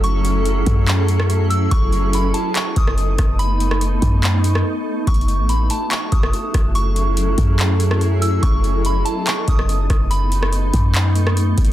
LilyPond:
<<
  \new Staff \with { instrumentName = "Synth bell" } { \time 4/4 \key b \mixolydian \tempo 4 = 143 cis'''2.~ cis'''8 e'''8 | cis'''4 b''8 a''8 cis'''8 dis'''4. | b''1 | cis'''4 b''8 a''8 cis'''8 dis'''4. |
cis'''2.~ cis'''8 e'''8 | cis'''4 b''8 a''8 cis'''8 dis'''4. | b''1 | }
  \new Staff \with { instrumentName = "Synth texture" } { \time 4/4 \key b \mixolydian <a fis' e''>1 | <b a' dis''>1~ | <b a' dis''>1 | <a fis' e''>1~ |
<a fis' e''>1 | <b a' dis''>1~ | <b a' dis''>1 | }
  \new Staff \with { instrumentName = "Ambient pad" } { \time 4/4 \key b \mixolydian <fis cis' e' gis' a'>1 | <a b dis'>1~ | <a b dis'>1 | <fis cis' e' gis' a'>1~ |
<fis cis' e' gis' a'>1 | <a b dis'>1~ | <a b dis'>1 | }
  \new Staff \with { instrumentName = "808-style bass" } { \clef bass \time 4/4 \key b \mixolydian fis,,4. fis,2~ fis,8 | fis,,4. r4 fis,,4 fis,,8~ | fis,,4. fis,4. r4 | fis,,8. a,,8. r4 fis,,8 r8 fis,,8~ |
fis,,4. fis,2~ fis,8 | fis,,4. r4 fis,,4 fis,,8~ | fis,,4. fis,2 fis,,8 | }
  \new DrumStaff \with { instrumentName = "Drums" } \drummode { \time 4/4 hh8 hh8 hh8 <hh bd>8 <hc hh>8 hh16 ss16 hh8 hh8 | <hh bd>8 hh8 hh8 hh8 <hc hh>8 <hh bd>16 ss16 hh8 <hh bd ss>8 | hh8 hh16 ss16 hh8 <hh bd>8 <hc hh>8 hh16 ss16 r4 | \tuplet 3/2 { <hh bd>16 hh16 hh16 hh16 r16 r16 } hh8 hh8 <hc hh>8 <hh bd>16 ss16 hh8 <hh bd ss>8 |
hh8 hh8 hh8 <hh bd>8 <hc hh>8 hh16 ss16 hh8 hh8 | <hh bd>8 hh8 hh8 hh8 <hc hh>8 <hh bd>16 ss16 hh8 <hh bd ss>8 | hh8 hh16 ss16 hh8 <hh bd>8 <hc hh>8 hh16 ss16 \tuplet 3/2 { hh16 r16 r16 <hh bd>16 hh16 r16 } | }
>>